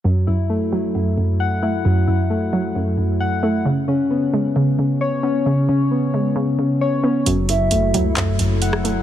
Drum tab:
HH |----------------|----------------|----------------|----------------|
CP |----------------|----------------|----------------|----------------|
SD |----------------|----------------|----------------|----------------|

HH |x-x-x-x-x-x-x-x-|
CP |--------x-------|
SD |-------------r--|